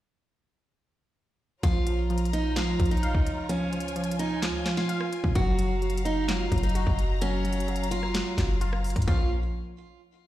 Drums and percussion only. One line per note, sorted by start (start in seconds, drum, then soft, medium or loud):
1.63 kick loud
1.63 closed hi-hat medium
1.87 closed hi-hat medium
2.10 closed hi-hat soft
2.18 closed hi-hat soft
2.25 closed hi-hat medium
2.33 closed hi-hat medium
2.56 snare loud
2.56 clap medium
2.56 closed hi-hat medium
2.80 kick medium
2.80 closed hi-hat medium
2.85 closed hi-hat medium
2.91 closed hi-hat soft
2.97 closed hi-hat soft
3.03 closed hi-hat medium
3.15 kick loud
3.27 closed hi-hat medium
3.49 closed hi-hat medium
3.73 closed hi-hat medium
3.80 closed hi-hat medium
3.88 closed hi-hat medium
3.96 closed hi-hat medium
4.04 closed hi-hat medium
4.11 closed hi-hat medium
4.19 closed hi-hat medium
4.42 snare loud
4.42 clap loud
4.42 closed hi-hat medium
4.66 snare medium
4.66 clap medium
4.66 closed hi-hat medium
4.77 snare medium
4.89 closed hi-hat medium
5.01 cross-stick loud
5.13 closed hi-hat medium
5.24 kick medium
5.35 kick loud
5.35 closed hi-hat medium
5.59 closed hi-hat medium
5.82 closed hi-hat soft
5.90 closed hi-hat soft
5.97 closed hi-hat medium
6.06 closed hi-hat medium
6.29 snare loud
6.29 clap medium
6.29 closed hi-hat medium
6.52 kick medium
6.52 closed hi-hat medium
6.58 closed hi-hat medium
6.63 closed hi-hat soft
6.69 closed hi-hat soft
6.75 closed hi-hat medium
6.87 kick medium
6.99 closed hi-hat medium
7.22 closed hi-hat medium
7.45 closed hi-hat medium
7.53 closed hi-hat medium
7.60 closed hi-hat medium
7.68 closed hi-hat soft
7.76 closed hi-hat soft
7.84 closed hi-hat medium
7.92 closed hi-hat medium
8.03 cross-stick medium
8.15 snare loud
8.15 clap medium
8.15 closed hi-hat medium
8.38 kick medium
8.38 snare loud
8.38 clap medium
8.38 closed hi-hat medium
8.61 closed hi-hat medium
8.73 cross-stick loud
8.84 closed hi-hat soft
8.84 open hi-hat medium
8.90 closed hi-hat medium
8.96 kick medium
8.96 closed hi-hat medium
9.02 closed hi-hat medium
9.08 kick loud